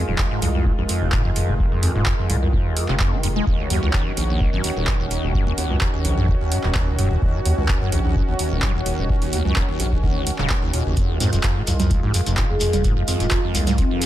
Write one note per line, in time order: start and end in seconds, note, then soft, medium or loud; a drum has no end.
0.00 10.93 D#3 medium
0.00 3.43 G#3 medium
0.00 3.43 F4 medium
0.08 0.15 D#1 loud
0.08 0.20 F2 medium
0.18 0.29 D#2 loud
0.18 kick loud
0.18 clap loud
0.31 0.40 G#2 loud
0.42 0.72 C2 loud
0.42 0.49 F2 loud
0.42 open hi-hat loud
0.55 0.67 F2 medium
0.66 0.73 A#2 loud
0.66 kick loud
0.78 0.86 A#1 loud
0.78 0.84 F2 medium
0.89 1.03 F2 medium
0.89 open hi-hat loud
1.01 1.42 F1 loud
1.01 1.11 D#2 loud
1.12 1.23 G#2 loud
1.12 kick loud
1.12 clap loud
1.25 1.31 F2 loud
1.36 1.50 F2 medium
1.36 open hi-hat loud
1.48 1.77 F1 medium
1.48 1.54 A#2 loud
1.59 1.66 F2 medium
1.59 kick loud
1.72 1.84 F2 medium
1.83 1.93 D#2 loud
1.83 1.91 F2 medium
1.83 open hi-hat loud
1.95 2.03 D#1 medium
1.95 2.04 G#2 loud
2.06 kick loud
2.06 clap loud
2.19 2.31 F2 medium
2.30 2.59 C2 loud
2.30 2.37 A#2 loud
2.30 open hi-hat loud
2.42 2.48 F2 medium
2.53 2.67 F2 medium
2.53 kick loud
2.66 2.78 D#2 loud
2.77 2.87 F2 medium
2.77 open hi-hat loud
2.88 3.41 F1 medium
2.88 2.95 C3 loud
2.88 clap soft
3.00 3.14 F2 loud
3.00 kick loud
3.00 clap loud
3.13 3.22 F3 medium
3.23 3.28 F2 loud
3.23 open hi-hat loud
3.36 3.45 G#3 loud
3.47 3.55 D#1 loud
3.47 3.61 D#2 medium
3.47 10.93 C#4 medium
3.47 10.93 F#4 medium
3.47 kick loud
3.59 3.68 C#2 loud
3.70 3.79 D#2 medium
3.70 3.81 F#2 loud
3.70 open hi-hat loud
3.83 3.90 C#2 medium
3.83 3.89 D#2 loud
3.93 4.08 D#2 medium
3.93 kick loud
3.93 clap loud
4.06 4.12 G#2 loud
4.17 4.47 A#1 loud
4.17 4.24 D#2 medium
4.17 open hi-hat loud
4.30 4.42 D#2 medium
4.41 4.51 C#2 loud
4.41 kick loud
4.53 4.61 G#1 loud
4.53 4.62 F#2 loud
4.64 4.71 D#2 medium
4.64 open hi-hat loud
4.77 5.17 D#1 medium
4.77 4.89 D#2 medium
4.87 4.94 G#2 medium
4.87 kick loud
4.87 clap loud
5.00 5.06 D#2 medium
5.11 5.25 D#2 medium
5.11 open hi-hat loud
5.23 5.52 D#1 medium
5.23 5.33 C#2 loud
5.34 5.45 F#2 loud
5.34 kick loud
5.47 5.53 D#2 loud
5.58 5.66 D#2 medium
5.58 5.72 D#2 medium
5.58 open hi-hat medium
5.70 5.78 C#2 medium
5.70 5.76 G#2 loud
5.81 5.88 D#2 medium
5.81 kick loud
5.81 clap loud
5.94 6.06 D#2 medium
6.05 6.34 A#1 loud
6.05 6.15 C#2 loud
6.05 open hi-hat loud
6.17 6.26 F#2 loud
6.28 6.35 D#2 medium
6.28 kick loud
6.41 6.53 D#2 medium
6.52 6.58 G#2 loud
6.52 open hi-hat loud
6.63 7.16 D#1 medium
6.63 6.70 D#2 medium
6.63 clap soft
6.75 6.89 D#2 medium
6.75 kick loud
6.75 clap loud
6.87 6.97 C#2 loud
6.99 7.09 F#2 loud
6.99 open hi-hat medium
7.11 7.17 D#2 loud
7.22 7.30 D#1 loud
7.22 7.36 D#2 medium
7.22 kick loud
7.34 7.40 G#2 loud
7.45 7.52 D#2 medium
7.45 7.54 D#2 medium
7.45 open hi-hat medium
7.58 7.65 C#2 loud
7.58 7.70 D#2 medium
7.68 7.79 C#2 medium
7.68 kick loud
7.68 clap loud
7.81 7.90 F#2 loud
7.92 8.22 A#1 loud
7.92 7.99 D#2 loud
7.92 open hi-hat medium
8.05 8.17 D#2 medium
8.16 8.22 G#2 loud
8.16 kick loud
8.28 8.36 G#1 loud
8.28 8.34 D#2 medium
8.39 8.53 D#2 medium
8.39 open hi-hat loud
8.51 8.92 D#1 medium
8.51 8.61 C#2 loud
8.62 8.73 F#2 loud
8.62 kick loud
8.62 clap loud
8.75 8.81 D#2 loud
8.86 9.00 D#2 medium
8.86 open hi-hat loud
8.98 9.27 D#1 medium
8.98 9.04 G#2 loud
9.09 9.16 D#2 medium
9.09 kick loud
9.22 9.34 D#2 medium
9.22 open hi-hat medium
9.33 9.43 C#2 loud
9.33 9.41 D#2 medium
9.33 open hi-hat loud
9.45 9.53 C#2 loud
9.45 9.54 F#2 loud
9.56 9.63 D#2 loud
9.56 kick loud
9.56 clap loud
9.69 9.81 D#2 medium
9.80 10.09 A#1 loud
9.80 9.87 G#2 loud
9.80 open hi-hat loud
9.92 9.98 D#2 medium
9.92 kick medium
10.03 10.17 D#2 medium
10.03 kick loud
10.16 10.25 C#2 loud
10.27 10.31 C#2 loud
10.27 open hi-hat loud
10.38 10.62 D#1 medium
10.38 10.52 C#3 loud
10.38 clap soft
10.49 10.54 D#2 medium
10.49 kick loud
10.49 clap loud
10.62 10.70 F#1 loud
10.62 10.72 D#2 medium
10.73 10.82 D#2 medium
10.73 10.84 A#2 medium
10.73 open hi-hat loud
10.86 10.93 F#1 medium
10.86 10.95 D#2 medium
10.96 11.05 F1 loud
10.96 11.11 F2 medium
10.96 14.06 D#3 medium
10.96 14.06 G#3 medium
10.96 14.06 F4 medium
10.96 kick loud
10.96 closed hi-hat medium
10.96 shekere soft
11.09 11.18 D#2 loud
11.20 11.29 F2 medium
11.20 11.31 G#2 loud
11.20 open hi-hat loud
11.20 shekere medium
11.33 11.40 D#1 loud
11.33 11.39 F2 loud
11.33 closed hi-hat medium
11.33 shekere soft
11.43 11.58 F2 medium
11.43 kick loud
11.43 clap loud
11.43 closed hi-hat medium
11.43 shekere soft
11.56 11.62 A#2 loud
11.67 11.97 C2 loud
11.67 11.74 F2 medium
11.67 open hi-hat loud
11.67 shekere loud
11.80 11.92 F2 medium
11.80 closed hi-hat medium
11.80 low conga medium
11.80 shekere soft
11.90 12.01 D#2 loud
11.90 kick loud
11.90 closed hi-hat medium
11.90 shekere soft
12.03 12.11 A#1 loud
12.03 12.12 G#2 loud
12.14 12.21 F2 loud
12.14 open hi-hat loud
12.14 shekere medium
12.26 12.67 F1 medium
12.26 12.39 F2 medium
12.26 closed hi-hat medium
12.26 shekere medium
12.37 12.44 A#2 loud
12.37 kick loud
12.37 clap loud
12.37 closed hi-hat medium
12.37 shekere soft
12.50 12.56 F2 medium
12.50 12.57 G#4 medium
12.60 12.75 F2 medium
12.60 12.69 G#4 medium
12.60 open hi-hat loud
12.60 shekere medium
12.73 13.02 F1 medium
12.73 12.83 D#2 loud
12.73 closed hi-hat medium
12.73 low conga medium
12.73 shekere soft
12.84 12.95 G#2 loud
12.84 kick loud
12.84 closed hi-hat medium
12.84 shekere soft
12.97 13.03 F2 loud
13.08 13.16 F2 medium
13.08 13.22 F2 medium
13.08 open hi-hat loud
13.08 shekere medium
13.20 13.28 D#1 loud
13.20 13.26 A#2 loud
13.20 13.32 F4 medium
13.20 closed hi-hat medium
13.20 shekere medium
13.31 13.38 F2 medium
13.31 kick loud
13.31 clap loud
13.31 closed hi-hat medium
13.31 shekere soft
13.44 13.56 F2 medium
13.55 13.84 C2 loud
13.55 13.65 D#2 loud
13.55 open hi-hat loud
13.55 shekere loud
13.67 13.76 G#2 loud
13.67 closed hi-hat medium
13.67 low conga medium
13.67 shekere medium
13.78 13.85 F2 medium
13.78 13.86 C4 medium
13.78 kick loud
13.78 closed hi-hat medium
13.78 shekere soft
13.91 14.03 F2 medium
13.91 13.98 C4 medium
14.02 14.06 A#2 loud
14.02 open hi-hat loud
14.02 shekere medium